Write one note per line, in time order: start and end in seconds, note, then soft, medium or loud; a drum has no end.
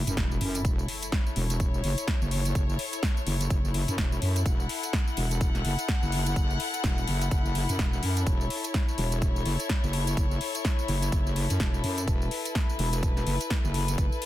0.00 14.26 E4 medium
0.00 impact medium
0.07 0.16 F#2 medium
0.07 closed hi-hat medium
0.07 tambourine medium
0.17 0.39 E1 loud
0.17 kick loud
0.17 snare loud
0.17 closed hi-hat medium
0.17 tambourine medium
0.31 14.26 A4 medium
0.31 tambourine soft
0.41 0.63 F#2 loud
0.41 open hi-hat loud
0.55 closed hi-hat medium
0.55 tambourine medium
0.63 0.87 E1 medium
0.63 4.45 C#5 medium
0.63 kick loud
0.63 closed hi-hat medium
0.63 tambourine medium
0.79 tambourine soft
0.88 open hi-hat loud
1.03 closed hi-hat medium
1.03 tambourine medium
1.12 kick loud
1.12 snare loud
1.12 closed hi-hat medium
1.12 tambourine medium
1.27 tambourine soft
1.36 1.82 E1 loud
1.36 open hi-hat loud
1.50 closed hi-hat medium
1.50 tambourine medium
1.60 kick loud
1.60 closed hi-hat medium
1.60 tambourine medium
1.74 tambourine soft
1.84 1.96 F#1 loud
1.84 open hi-hat loud
1.98 closed hi-hat medium
1.98 tambourine medium
2.08 kick loud
2.08 snare loud
2.08 closed hi-hat medium
2.08 tambourine medium
2.22 2.54 F#1 medium
2.22 tambourine soft
2.31 open hi-hat loud
2.45 closed hi-hat medium
2.45 tambourine medium
2.55 2.77 F#1 medium
2.55 kick loud
2.55 closed hi-hat medium
2.55 tambourine medium
2.69 tambourine soft
2.79 open hi-hat loud
2.93 closed hi-hat medium
2.93 tambourine medium
3.03 kick loud
3.03 snare loud
3.03 closed hi-hat medium
3.03 tambourine medium
3.17 tambourine soft
3.27 3.49 F#1 loud
3.27 open hi-hat loud
3.41 closed hi-hat medium
3.41 tambourine medium
3.50 3.86 F#1 loud
3.50 kick loud
3.50 closed hi-hat medium
3.50 tambourine medium
3.65 tambourine soft
3.74 open hi-hat loud
3.88 3.96 F#2 loud
3.88 closed hi-hat medium
3.88 tambourine medium
3.98 4.20 E1 loud
3.98 kick loud
3.98 snare loud
3.98 closed hi-hat medium
3.98 tambourine medium
4.12 tambourine soft
4.22 4.44 F#2 loud
4.22 open hi-hat loud
4.36 closed hi-hat medium
4.36 tambourine medium
4.44 4.68 E1 loud
4.44 8.26 F#5 medium
4.44 kick loud
4.44 closed hi-hat medium
4.44 tambourine medium
4.60 tambourine soft
4.69 open hi-hat loud
4.83 closed hi-hat medium
4.83 tambourine medium
4.93 kick loud
4.93 snare loud
4.93 closed hi-hat medium
4.93 tambourine medium
5.08 tambourine soft
5.17 5.63 E1 medium
5.17 open hi-hat loud
5.31 closed hi-hat medium
5.31 tambourine medium
5.41 kick loud
5.41 closed hi-hat medium
5.41 tambourine medium
5.55 snare soft
5.55 tambourine soft
5.65 5.77 F#1 loud
5.65 open hi-hat loud
5.79 closed hi-hat medium
5.79 tambourine medium
5.88 kick loud
5.88 snare loud
5.88 closed hi-hat medium
5.88 tambourine medium
6.03 6.35 F#1 loud
6.03 tambourine soft
6.12 open hi-hat loud
6.26 closed hi-hat medium
6.26 tambourine medium
6.36 6.58 F#1 medium
6.36 kick loud
6.36 closed hi-hat soft
6.36 tambourine medium
6.50 tambourine soft
6.60 open hi-hat loud
6.74 closed hi-hat medium
6.74 tambourine medium
6.84 7.06 E1 loud
6.84 kick loud
6.84 snare loud
6.84 closed hi-hat soft
6.84 tambourine medium
6.98 tambourine soft
7.07 7.30 F#1 medium
7.07 open hi-hat loud
7.22 closed hi-hat medium
7.22 tambourine medium
7.31 7.67 F#1 loud
7.31 kick loud
7.31 closed hi-hat medium
7.31 tambourine medium
7.46 tambourine soft
7.55 open hi-hat loud
7.69 7.77 F#2 loud
7.69 closed hi-hat medium
7.69 tambourine medium
7.79 8.01 E1 loud
7.79 kick loud
7.79 snare loud
7.79 closed hi-hat soft
7.79 tambourine medium
7.93 tambourine soft
8.03 8.25 F#2 medium
8.03 open hi-hat loud
8.17 closed hi-hat medium
8.17 tambourine medium
8.25 8.49 E1 medium
8.25 12.07 C#5 medium
8.25 kick loud
8.25 closed hi-hat soft
8.25 tambourine medium
8.41 tambourine soft
8.50 open hi-hat loud
8.64 closed hi-hat medium
8.64 tambourine medium
8.74 kick loud
8.74 snare loud
8.74 closed hi-hat soft
8.74 tambourine medium
8.88 tambourine soft
8.98 9.44 E1 loud
8.98 open hi-hat loud
9.12 closed hi-hat medium
9.12 tambourine medium
9.22 kick loud
9.22 closed hi-hat medium
9.22 tambourine medium
9.36 tambourine soft
9.46 9.57 F#1 medium
9.46 open hi-hat loud
9.60 closed hi-hat medium
9.60 tambourine medium
9.69 kick loud
9.69 snare loud
9.69 closed hi-hat medium
9.69 tambourine medium
9.83 10.16 F#1 loud
9.83 tambourine soft
9.93 open hi-hat loud
10.07 closed hi-hat medium
10.07 tambourine medium
10.17 10.39 F#1 loud
10.17 kick loud
10.17 closed hi-hat medium
10.17 tambourine medium
10.31 tambourine soft
10.41 open hi-hat loud
10.55 closed hi-hat medium
10.55 tambourine medium
10.65 kick loud
10.65 snare loud
10.65 closed hi-hat soft
10.65 tambourine medium
10.79 tambourine soft
10.88 11.11 F#1 loud
10.88 open hi-hat loud
11.02 closed hi-hat medium
11.02 tambourine medium
11.12 11.48 F#1 loud
11.12 kick loud
11.12 closed hi-hat medium
11.12 tambourine medium
11.27 tambourine soft
11.36 open hi-hat loud
11.50 11.58 F#2 medium
11.50 closed hi-hat medium
11.50 tambourine medium
11.60 11.82 E1 loud
11.60 kick loud
11.60 snare loud
11.60 closed hi-hat medium
11.60 tambourine medium
11.74 tambourine soft
11.84 12.06 F#2 medium
11.84 open hi-hat loud
11.98 closed hi-hat medium
11.98 tambourine medium
12.05 12.30 E1 medium
12.05 14.26 B4 medium
12.05 kick loud
12.05 closed hi-hat medium
12.05 tambourine medium
12.22 tambourine soft
12.31 open hi-hat loud
12.45 closed hi-hat medium
12.45 tambourine medium
12.55 kick loud
12.55 snare loud
12.55 closed hi-hat medium
12.55 tambourine medium
12.69 tambourine soft
12.79 13.25 E1 loud
12.79 open hi-hat loud
12.93 closed hi-hat medium
12.93 tambourine medium
13.03 kick loud
13.03 closed hi-hat medium
13.03 tambourine medium
13.17 snare soft
13.17 tambourine soft
13.27 13.38 F#1 medium
13.27 open hi-hat loud
13.41 closed hi-hat medium
13.41 tambourine medium
13.50 kick loud
13.50 snare loud
13.50 closed hi-hat medium
13.50 tambourine medium
13.64 13.96 F#1 loud
13.64 tambourine soft
13.74 open hi-hat loud
13.88 closed hi-hat medium
13.88 tambourine medium
13.98 14.10 F#1 loud
13.98 kick loud
13.98 closed hi-hat medium
13.98 tambourine medium
14.12 tambourine soft
14.22 open hi-hat loud